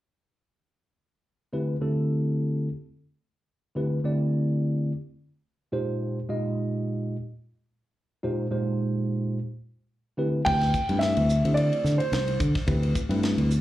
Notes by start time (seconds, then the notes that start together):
1.53 D3 A3 C4 E4 G4 B4
1.81 D3 A3 C4 E4 G4 A4
3.75 D3 A3 C4 E4 G4 B4
4.04 D3 A3 C4 E4 G4 D5
5.72 A#2 G#3 D#4 F4 G4 C5
6.29 A#2 G#3 D#4 F4 G4 D#5
8.23 A#2 G#3 D#4 F4 G4 C5
8.51 A#2 G#3 D#4 F4 G4 C5
10.17 D3 A3 C4 E4 G4 B4
10.45 D2 A3 C4 E4 G4 B4 G5, kick, crash
10.61 snare, ride
10.74 kick, hi-hat pedal
10.89 G2 A3 C4 E4 G4 B4, ride
10.99 E5, snare, ride
11.17 D2, ride
11.29 hi-hat pedal
11.44 D3 A3 C4 E4 G4 C5, ride
11.54 D5, ride
11.73 ride
11.84 D3, snare, hi-hat pedal
11.98 C5, ride
12.12 C2, snare, ride
12.28 ride
12.40 D3, kick, hi-hat pedal
12.55 kick, snare, ride
12.67 D2 A3 C4 E4 G4 B4, kick, ride
12.83 ride
12.95 kick, hi-hat pedal
13.09 G2 A3 C4 E4 G4 B4, ride
13.23 snare, ride
13.37 D2, ride
13.50 hi-hat pedal